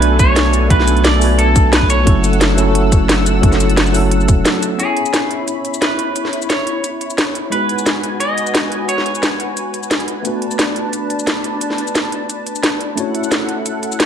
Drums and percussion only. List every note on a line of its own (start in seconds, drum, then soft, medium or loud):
0.02 closed hi-hat medium
0.19 kick loud
0.19 closed hi-hat medium
0.19 cabasa medium
0.36 snare loud
0.36 closed hi-hat medium
0.53 closed hi-hat medium
0.53 cabasa medium
0.70 kick loud
0.70 closed hi-hat medium
0.80 snare soft
0.87 closed hi-hat medium
0.87 cabasa medium
0.97 closed hi-hat soft
1.04 snare loud
1.04 closed hi-hat medium
1.21 open hi-hat medium
1.21 cabasa medium
1.39 closed hi-hat medium
1.56 kick loud
1.56 closed hi-hat medium
1.56 cabasa medium
1.73 snare loud
1.73 closed hi-hat medium
1.82 kick medium
1.90 closed hi-hat medium
1.90 cabasa medium
2.07 kick loud
2.07 closed hi-hat medium
2.24 closed hi-hat medium
2.24 cabasa medium
2.33 closed hi-hat soft
2.41 snare loud
2.41 closed hi-hat medium
2.58 closed hi-hat medium
2.58 cabasa medium
2.75 closed hi-hat loud
2.92 kick loud
2.92 closed hi-hat medium
2.92 cabasa medium
3.09 snare loud
3.09 closed hi-hat medium
3.26 closed hi-hat medium
3.26 cabasa medium
3.43 kick loud
3.43 closed hi-hat loud
3.52 snare soft
3.52 cabasa soft
3.60 closed hi-hat medium
3.60 cabasa medium
3.69 closed hi-hat soft
3.77 snare loud
3.77 closed hi-hat medium
3.86 cabasa soft
3.94 open hi-hat medium
3.94 cabasa medium
4.11 closed hi-hat loud
4.21 cabasa soft
4.28 kick loud
4.28 closed hi-hat medium
4.28 cabasa medium
4.45 snare loud
4.45 closed hi-hat medium
4.63 closed hi-hat medium
4.63 cabasa medium
4.79 closed hi-hat medium
4.79 cabasa soft
4.97 closed hi-hat medium
5.06 cabasa medium
5.14 snare loud
5.14 closed hi-hat medium
5.14 cabasa soft
5.31 closed hi-hat medium
5.48 closed hi-hat medium
5.48 cabasa medium
5.65 closed hi-hat medium
5.65 cabasa soft
5.74 cabasa medium
5.82 snare loud
5.82 closed hi-hat medium
5.99 closed hi-hat medium
6.16 closed hi-hat medium
6.16 cabasa soft
6.25 snare soft
6.33 closed hi-hat medium
6.42 cabasa medium
6.50 snare loud
6.50 closed hi-hat medium
6.50 cabasa soft
6.67 closed hi-hat medium
6.84 closed hi-hat medium
6.84 cabasa soft
7.01 closed hi-hat medium
7.01 cabasa soft
7.10 cabasa medium
7.18 snare loud
7.18 closed hi-hat medium
7.35 closed hi-hat medium
7.52 closed hi-hat medium
7.52 cabasa soft
7.69 closed hi-hat medium
7.78 cabasa medium
7.86 snare loud
7.86 closed hi-hat medium
7.86 cabasa soft
8.03 closed hi-hat medium
8.20 closed hi-hat medium
8.20 cabasa soft
8.38 closed hi-hat medium
8.38 cabasa soft
8.47 cabasa medium
8.55 snare loud
8.55 closed hi-hat medium
8.72 closed hi-hat medium
8.89 closed hi-hat medium
8.89 cabasa soft
8.98 snare soft
9.06 closed hi-hat medium
9.15 closed hi-hat soft
9.15 cabasa medium
9.23 snare loud
9.23 closed hi-hat medium
9.23 cabasa soft
9.40 closed hi-hat medium
9.57 closed hi-hat medium
9.57 cabasa soft
9.74 closed hi-hat medium
9.74 cabasa soft
9.83 cabasa medium
9.91 snare loud
9.91 closed hi-hat medium
10.00 closed hi-hat soft
10.08 closed hi-hat medium
10.25 closed hi-hat medium
10.25 cabasa soft
10.42 closed hi-hat medium
10.51 cabasa medium
10.59 snare loud
10.59 closed hi-hat medium
10.59 cabasa soft
10.76 closed hi-hat medium
10.93 closed hi-hat medium
10.93 cabasa soft
11.10 closed hi-hat medium
11.10 cabasa soft
11.19 cabasa medium
11.27 snare loud
11.27 closed hi-hat medium
11.44 closed hi-hat medium
11.61 closed hi-hat medium
11.61 cabasa soft
11.70 snare soft
11.78 closed hi-hat medium
11.87 cabasa medium
11.95 snare loud
11.95 closed hi-hat medium
11.95 cabasa soft
12.12 closed hi-hat medium
12.29 closed hi-hat medium
12.29 cabasa soft
12.47 closed hi-hat medium
12.47 cabasa soft
12.55 cabasa medium
12.63 snare loud
12.63 closed hi-hat medium
12.81 closed hi-hat medium
12.97 closed hi-hat medium
12.97 cabasa soft
13.15 closed hi-hat medium
13.24 cabasa medium
13.32 snare loud
13.32 closed hi-hat medium
13.32 cabasa soft
13.49 closed hi-hat medium
13.66 closed hi-hat medium
13.66 cabasa soft
13.83 closed hi-hat medium
13.83 cabasa soft
13.92 cabasa medium
14.00 snare loud
14.00 closed hi-hat medium